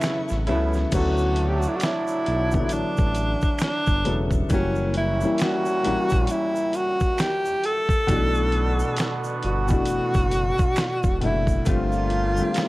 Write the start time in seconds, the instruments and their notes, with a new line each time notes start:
Already playing: upright piano C#3 F#3 B3 E4 F#4 A4, tenor saxophone E4, string section B4 F#5 A5 C#6
0.01 trombone section C#3 B3 E4, finger snap, snare, closed hi-hat, shaker
0.29 analog synth bass A1, snare, shaker
0.47 analog synth bass C#2, upright piano C#3 F#3 B3 E4, trombone section C#3 B3 E4, tenor saxophone E4, closed hi-hat
0.52 upright piano A4
0.73 snare, shaker
0.92 analog synth bass D2, trombone section A2 F#3 D4, upright piano F#3 B3 C#4 E4, tenor saxophone F#4, kick, closed hi-hat, crash, shaker
0.97 upright piano A4
1.18 shaker
1.36 closed hi-hat
1.48 tenor saxophone G4
1.59 tenor saxophone F#4, shaker
1.68 tenor saxophone E4
1.76 tenor saxophone F#4
1.80 tenor saxophone E4, finger snap, snare, closed hi-hat, shaker
2.07 shaker
2.26 analog synth bass B1, closed hi-hat
2.51 upright piano D3 E3 B3, kick, shaker
2.56 upright piano E4 A4
2.60 upright piano F#3
2.69 analog synth bass A1, tenor saxophone D4, closed hi-hat, shaker
2.97 analog synth bass A1, kick, shaker
3.15 closed hi-hat, shaker
3.41 kick, shaker
3.59 finger snap, snare, closed hi-hat, shaker
3.63 tenor saxophone D4
3.86 analog synth bass G1, kick, shaker
4.04 analog synth bass E1, upright piano C#3 F#3 B3 E4, closed hi-hat
4.09 upright piano A4
4.31 kick, shaker
4.49 analog synth bass F#1, trombone section A#2 G3 C#4, upright piano E3 G3 A#3 C#4, tenor saxophone C#4, kick, closed hi-hat, shaker
4.54 upright piano F#4
4.75 shaker
4.94 tenor saxophone E4, closed hi-hat
5.21 upright piano E3 G3 A#3 C#4, shaker
5.25 upright piano E4
5.38 tenor saxophone F#4, finger snap, snare, closed hi-hat, shaker
5.65 shaker
5.83 analog synth bass A#1, upright piano E3 G3 A#3 C#4, closed hi-hat
5.88 upright piano F#4
6.10 analog synth bass A#1, kick, shaker
6.27 tenor saxophone E4, closed hi-hat, shaker
6.56 shaker
6.73 tenor saxophone F#4, closed hi-hat, shaker
7.00 kick, shaker
7.18 tenor saxophone G4, finger snap, snare, closed hi-hat, shaker
7.45 shaker
7.64 tenor saxophone A4, closed hi-hat
7.89 kick, shaker
8.07 analog synth bass B1, upright piano B2 E3 A3 D4, trombone section D3 B3 F#4, kick, closed hi-hat, shaker
8.12 upright piano F#4
8.35 shaker
8.52 closed hi-hat
8.79 shaker
8.96 finger snap, snare, closed hi-hat, shaker
9.24 shaker
9.43 analog synth bass G1, tenor saxophone F#4, closed hi-hat
9.68 upright piano B2 E3 A3 D4, kick, shaker
9.73 upright piano F#4
9.86 closed hi-hat, shaker
9.90 analog synth bass F#1
10.14 analog synth bass F#1, kick, shaker
10.31 closed hi-hat, shaker
10.58 kick, shaker
10.76 finger snap, snare, closed hi-hat, shaker
11.03 analog synth bass E1, kick, shaker
11.21 analog synth bass F#1, upright piano B2 E3 A3 D4, tenor saxophone E4, closed hi-hat
11.25 upright piano E4
11.47 kick, shaker
11.65 analog synth bass G1, upright piano D3 G3 A3 C4, trombone section D3 A#3 F4, tenor saxophone F4, kick, closed hi-hat, shaker
11.70 upright piano F4
11.92 shaker
12.10 closed hi-hat
12.36 upright piano D3 G3 A3 C4, shaker
12.41 upright piano G4
12.54 finger snap, snare, closed hi-hat, shaker